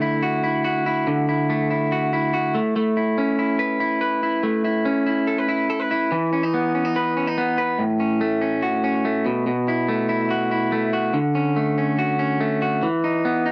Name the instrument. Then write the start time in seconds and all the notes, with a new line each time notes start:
clean electric guitar
Already playing: D3 A3
0.02 E4
0.23 F#4
0.44 E4
0.65 F#4
0.86 E4
1.07 D3
1.29 E4
1.50 A3
1.71 E4
1.92 F#4
2.13 E4
2.34 F#4
2.55 A3
2.76 A3
2.97 E4
3.18 C#4
3.39 E4
3.59 B4
3.80 E4
4.01 B4
4.23 E4
4.43 A3
4.64 E4
4.85 C#4
5.06 E4
5.27 A4
5.38 B4
5.49 E4
5.70 A4
5.80 B4
5.91 E4
6.12 E3
6.33 C#4
6.43 D#4
6.54 B3
6.75 C#4
6.85 D#4
6.96 B4
7.17 C#4
7.27 D#4
7.38 B3
7.58 B4
7.79 A2
8.00 C#4
8.21 A3
8.41 C#4
8.62 F#4
8.84 C#4
9.05 A3
9.26 B2
9.47 B2
9.68 E4
9.88 A3
10.09 E4
10.30 F#4
10.51 E4
10.72 A3
10.93 F#4
11.14 D3
11.35 C#4
11.56 A3
11.78 C#4
11.99 F#4
12.19 C#4
12.40 A3
12.62 F#4
12.83 E3
13.04 D#4
13.25 B3
13.46 D#4